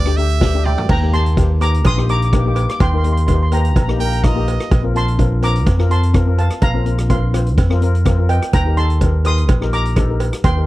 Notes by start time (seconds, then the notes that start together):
Already playing: D2 D5
0.05 A3 D4 G4, cross-stick
0.17 A3 D4 G4 E5, closed hi-hat
0.29 closed hi-hat
0.40 A3 D4 G4, kick, snare, cowbell
0.53 A3 D4 G4
0.65 D5 E5 G5, mid tom
0.78 floor tom
0.89 D#2 G5 A#5, kick, crash, cowbell
1.01 A#3 D#4 G4
1.12 A#3 D#4 G4 A5 C6, closed hi-hat
1.26 closed hi-hat
1.36 A#3 D#4 G4, kick, closed hi-hat, cowbell
1.60 A#3 D#4 G4 A#5 D6, closed hi-hat, cowbell
1.74 closed hi-hat
1.85 A#1 C6 D#6, kick, closed hi-hat, cowbell
1.96 A#3 D#4 G4, cross-stick
2.08 A#3 D#4 G4 A#5 D6, closed hi-hat
2.17 D6
2.22 D6, closed hi-hat
2.32 A#3 D#4 G4 D6, kick, cross-stick, closed hi-hat, cowbell
2.40 D6
2.45 A#3 D#4 G4 D6
2.55 D6, closed hi-hat, cowbell
2.63 D6
2.69 D6, cross-stick, closed hi-hat
2.80 D#2 G5 C6, kick, closed hi-hat, cowbell
2.90 A#3 D#4 C6
2.94 A#4 C6
3.04 A#3 D#4 G4 C6, closed hi-hat
3.12 C6
3.17 C6, closed hi-hat
3.27 A#3 D#4 G4 C6, kick, closed hi-hat, cowbell
3.35 C6
3.43 C6
3.51 A#3 D#4 G4 G5 A#5, closed hi-hat, cowbell
3.60 A#5
3.65 closed hi-hat
3.69 A#5
3.76 A#1 A#5, kick, closed hi-hat, cowbell
3.83 A#5
3.88 A#3 D#4 G4 A#5, cross-stick
3.98 A#3 D#4 A#4 G5 A#5, closed hi-hat
4.05 A#5
4.13 A#5, closed hi-hat
4.20 A#3 D#4 D#5 A#5, kick, cross-stick, closed hi-hat, cowbell
4.25 F4 A#5
4.35 A#3 D#4 G4 A#5
4.48 closed hi-hat, cowbell
4.60 cross-stick, closed hi-hat
4.71 A#1, kick, closed hi-hat, cowbell
4.82 C4 F4 A#4
4.94 C4 F4 A#4 A5 C6, closed hi-hat
5.08 closed hi-hat
5.18 C4 F4 A#4, kick, closed hi-hat, cowbell
5.41 C4 F4 A#4 A#5 D6, closed hi-hat, cowbell
5.56 closed hi-hat
5.66 F2, kick, closed hi-hat, cowbell
5.78 C4 F4 A#4, cross-stick
5.89 C4 F4 A#4 A5 C6, closed hi-hat
6.03 closed hi-hat
6.13 C4 F4 A#4, kick, cross-stick, closed hi-hat, cowbell
6.26 C4 F4 A#4
6.38 F5 A5, closed hi-hat, cowbell
6.50 cross-stick, closed hi-hat
6.62 A#1 F5 A#5, kick, closed hi-hat, cowbell
6.74 C4 F4 A#4
6.86 C4 F4 A#4, closed hi-hat
6.98 cross-stick, closed hi-hat
7.09 C4 F4 A#4 F5 C6, kick, closed hi-hat, cowbell
7.33 C4 F4 C5, cross-stick, closed hi-hat, cowbell
7.46 closed hi-hat
7.58 F2, kick, closed hi-hat, cowbell
7.70 C4 F4 A#4, cross-stick
7.81 C4 F4 A#4, closed hi-hat
7.95 closed hi-hat
8.05 C4 F4 A#4, kick, cross-stick, closed hi-hat, cowbell
8.18 C4 F4 A#4
8.29 D#5 G5, closed hi-hat, cowbell
8.42 cross-stick, closed hi-hat
8.53 D#2 G5 A#5, kick, closed hi-hat, cowbell
8.65 D#4 G4 A#4
8.77 D#4 G4 A4 A5 C6, closed hi-hat
8.90 closed hi-hat
9.01 D#4 G4 A#4, kick, closed hi-hat, cowbell
9.25 D#4 G4 A#4 C6 D#6, closed hi-hat, cowbell
9.38 closed hi-hat
9.49 A#1, kick, closed hi-hat, cowbell
9.61 D#4 G4 A#4, cross-stick
9.73 D#4 G4 A#4 A#5 D6, closed hi-hat
9.85 closed hi-hat
9.96 D#4 G4 A4, kick, cross-stick, closed hi-hat, cowbell
10.09 D#4 G4 A#4
10.20 closed hi-hat, cowbell
10.33 cross-stick, closed hi-hat
10.44 D#2 G5 C6, kick, closed hi-hat, cowbell
10.56 D#4 G4 A#4